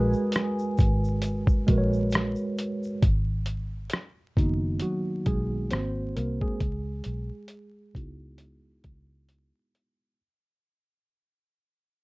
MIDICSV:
0, 0, Header, 1, 5, 480
1, 0, Start_track
1, 0, Key_signature, 5, "minor"
1, 0, Tempo, 895522
1, 1620, Time_signature, 4, 2, 24, 8
1, 6453, End_track
2, 0, Start_track
2, 0, Title_t, "Clean electric guitar"
2, 0, Program_c, 0, 27
2, 0, Note_on_c, 0, 68, 99
2, 1122, Note_off_c, 0, 68, 0
2, 6453, End_track
3, 0, Start_track
3, 0, Title_t, "Tine electric piano"
3, 0, Program_c, 1, 4
3, 0, Control_c, 1, 64, 127
3, 0, Note_on_c, 1, 56, 75
3, 0, Note_on_c, 1, 66, 68
3, 0, Note_on_c, 1, 70, 60
3, 0, Note_on_c, 1, 71, 83
3, 835, Note_off_c, 1, 56, 0
3, 839, Note_off_c, 1, 66, 0
3, 844, Note_off_c, 1, 70, 0
3, 847, Note_off_c, 1, 71, 0
3, 893, Note_on_c, 1, 56, 74
3, 901, Note_on_c, 1, 66, 68
3, 911, Note_on_c, 1, 70, 68
3, 918, Note_on_c, 1, 71, 62
3, 948, Note_off_c, 1, 71, 0
3, 953, Note_on_c, 1, 73, 78
3, 1570, Note_off_c, 1, 56, 0
3, 1574, Note_off_c, 1, 66, 0
3, 1579, Note_off_c, 1, 70, 0
3, 1600, Note_off_c, 1, 73, 0
3, 1628, Control_c, 1, 64, 0
3, 1723, Control_c, 1, 64, 127
3, 2341, Note_on_c, 1, 58, 51
3, 2344, Note_on_c, 1, 63, 77
3, 2345, Note_on_c, 1, 59, 49
3, 2348, Note_on_c, 1, 51, 63
3, 2348, Note_on_c, 1, 66, 55
3, 2568, Note_off_c, 1, 51, 0
3, 2578, Note_off_c, 1, 66, 0
3, 2585, Note_on_c, 1, 66, 83
3, 2589, Note_off_c, 1, 63, 0
3, 2590, Note_on_c, 1, 54, 73
3, 2672, Note_off_c, 1, 58, 0
3, 2674, Note_off_c, 1, 59, 0
3, 2806, Note_off_c, 1, 66, 0
3, 2809, Note_off_c, 1, 54, 0
3, 2822, Note_on_c, 1, 68, 86
3, 2829, Note_on_c, 1, 56, 66
3, 3048, Note_off_c, 1, 56, 0
3, 3062, Note_on_c, 1, 58, 55
3, 3062, Note_on_c, 1, 72, 98
3, 3066, Note_on_c, 1, 60, 74
3, 3067, Control_c, 1, 64, 0
3, 3068, Note_off_c, 1, 68, 0
3, 3070, Note_on_c, 1, 66, 60
3, 3154, Control_c, 1, 64, 127
3, 3285, Note_off_c, 1, 72, 0
3, 3289, Note_off_c, 1, 60, 0
3, 3304, Note_on_c, 1, 70, 83
3, 3305, Note_off_c, 1, 58, 0
3, 3312, Note_on_c, 1, 58, 67
3, 3433, Note_off_c, 1, 58, 0
3, 3439, Note_on_c, 1, 68, 84
3, 3442, Note_off_c, 1, 70, 0
3, 3446, Note_on_c, 1, 56, 66
3, 3524, Note_off_c, 1, 66, 0
3, 3548, Control_c, 1, 64, 0
3, 3658, Control_c, 1, 64, 127
3, 4262, Note_on_c, 1, 59, 46
3, 4264, Note_on_c, 1, 63, 46
3, 4266, Note_on_c, 1, 64, 45
3, 4268, Note_on_c, 1, 66, 55
3, 4593, Note_off_c, 1, 59, 0
3, 4593, Note_off_c, 1, 63, 0
3, 4595, Note_off_c, 1, 64, 0
3, 4596, Note_off_c, 1, 66, 0
3, 4960, Note_off_c, 1, 68, 0
3, 4964, Note_off_c, 1, 56, 0
3, 5467, Control_c, 1, 64, 0
3, 6453, End_track
4, 0, Start_track
4, 0, Title_t, "Fingered electric bass"
4, 0, Program_c, 2, 33
4, 0, Note_on_c, 2, 34, 79
4, 71, Note_off_c, 2, 34, 0
4, 426, Note_on_c, 2, 32, 88
4, 882, Note_off_c, 2, 32, 0
4, 905, Note_on_c, 2, 34, 87
4, 1257, Note_off_c, 2, 34, 0
4, 1625, Note_on_c, 2, 32, 102
4, 2081, Note_off_c, 2, 32, 0
4, 2345, Note_on_c, 2, 30, 83
4, 2568, Note_off_c, 2, 30, 0
4, 2825, Note_on_c, 2, 35, 82
4, 3048, Note_off_c, 2, 35, 0
4, 3068, Note_on_c, 2, 32, 96
4, 3289, Note_off_c, 2, 32, 0
4, 3306, Note_on_c, 2, 36, 69
4, 3431, Note_off_c, 2, 36, 0
4, 3544, Note_on_c, 2, 37, 101
4, 3767, Note_off_c, 2, 37, 0
4, 3785, Note_on_c, 2, 35, 85
4, 3910, Note_off_c, 2, 35, 0
4, 4264, Note_on_c, 2, 37, 74
4, 4721, Note_off_c, 2, 37, 0
4, 4743, Note_on_c, 2, 37, 77
4, 5096, Note_off_c, 2, 37, 0
4, 6453, End_track
5, 0, Start_track
5, 0, Title_t, "Drums"
5, 71, Note_on_c, 9, 82, 43
5, 124, Note_off_c, 9, 82, 0
5, 172, Note_on_c, 9, 42, 74
5, 178, Note_on_c, 9, 82, 66
5, 192, Note_on_c, 9, 37, 94
5, 225, Note_off_c, 9, 42, 0
5, 231, Note_off_c, 9, 82, 0
5, 245, Note_off_c, 9, 37, 0
5, 316, Note_on_c, 9, 82, 46
5, 370, Note_off_c, 9, 82, 0
5, 416, Note_on_c, 9, 82, 52
5, 421, Note_on_c, 9, 36, 83
5, 430, Note_on_c, 9, 42, 60
5, 469, Note_off_c, 9, 82, 0
5, 475, Note_off_c, 9, 36, 0
5, 484, Note_off_c, 9, 42, 0
5, 559, Note_on_c, 9, 82, 43
5, 613, Note_off_c, 9, 82, 0
5, 652, Note_on_c, 9, 42, 77
5, 659, Note_on_c, 9, 82, 69
5, 706, Note_off_c, 9, 42, 0
5, 713, Note_off_c, 9, 82, 0
5, 789, Note_on_c, 9, 36, 81
5, 792, Note_on_c, 9, 82, 42
5, 843, Note_off_c, 9, 36, 0
5, 846, Note_off_c, 9, 82, 0
5, 900, Note_on_c, 9, 42, 64
5, 902, Note_on_c, 9, 36, 93
5, 954, Note_off_c, 9, 42, 0
5, 955, Note_off_c, 9, 36, 0
5, 1035, Note_on_c, 9, 82, 44
5, 1089, Note_off_c, 9, 82, 0
5, 1131, Note_on_c, 9, 82, 66
5, 1139, Note_on_c, 9, 42, 75
5, 1154, Note_on_c, 9, 37, 121
5, 1185, Note_off_c, 9, 82, 0
5, 1192, Note_off_c, 9, 42, 0
5, 1207, Note_off_c, 9, 37, 0
5, 1263, Note_on_c, 9, 82, 45
5, 1316, Note_off_c, 9, 82, 0
5, 1383, Note_on_c, 9, 82, 47
5, 1385, Note_on_c, 9, 42, 64
5, 1436, Note_off_c, 9, 82, 0
5, 1439, Note_off_c, 9, 42, 0
5, 1518, Note_on_c, 9, 82, 47
5, 1572, Note_off_c, 9, 82, 0
5, 1621, Note_on_c, 9, 36, 111
5, 1622, Note_on_c, 9, 42, 84
5, 1675, Note_off_c, 9, 36, 0
5, 1675, Note_off_c, 9, 42, 0
5, 1854, Note_on_c, 9, 42, 63
5, 1908, Note_off_c, 9, 42, 0
5, 2089, Note_on_c, 9, 42, 69
5, 2109, Note_on_c, 9, 37, 96
5, 2142, Note_off_c, 9, 42, 0
5, 2162, Note_off_c, 9, 37, 0
5, 2341, Note_on_c, 9, 36, 80
5, 2349, Note_on_c, 9, 42, 58
5, 2395, Note_off_c, 9, 36, 0
5, 2403, Note_off_c, 9, 42, 0
5, 2570, Note_on_c, 9, 42, 79
5, 2624, Note_off_c, 9, 42, 0
5, 2820, Note_on_c, 9, 42, 63
5, 2822, Note_on_c, 9, 36, 86
5, 2873, Note_off_c, 9, 42, 0
5, 2875, Note_off_c, 9, 36, 0
5, 3058, Note_on_c, 9, 42, 81
5, 3073, Note_on_c, 9, 37, 110
5, 3112, Note_off_c, 9, 42, 0
5, 3127, Note_off_c, 9, 37, 0
5, 3305, Note_on_c, 9, 42, 63
5, 3358, Note_off_c, 9, 42, 0
5, 3438, Note_on_c, 9, 36, 87
5, 3491, Note_off_c, 9, 36, 0
5, 3540, Note_on_c, 9, 42, 85
5, 3541, Note_on_c, 9, 36, 116
5, 3593, Note_off_c, 9, 42, 0
5, 3594, Note_off_c, 9, 36, 0
5, 3773, Note_on_c, 9, 42, 66
5, 3827, Note_off_c, 9, 42, 0
5, 4009, Note_on_c, 9, 42, 67
5, 4063, Note_off_c, 9, 42, 0
5, 4260, Note_on_c, 9, 36, 80
5, 4267, Note_on_c, 9, 42, 54
5, 4314, Note_off_c, 9, 36, 0
5, 4321, Note_off_c, 9, 42, 0
5, 4492, Note_on_c, 9, 42, 82
5, 4546, Note_off_c, 9, 42, 0
5, 4738, Note_on_c, 9, 42, 60
5, 4741, Note_on_c, 9, 36, 92
5, 4792, Note_off_c, 9, 42, 0
5, 4794, Note_off_c, 9, 36, 0
5, 4978, Note_on_c, 9, 42, 71
5, 5031, Note_off_c, 9, 42, 0
5, 5225, Note_on_c, 9, 42, 53
5, 5279, Note_off_c, 9, 42, 0
5, 6453, End_track
0, 0, End_of_file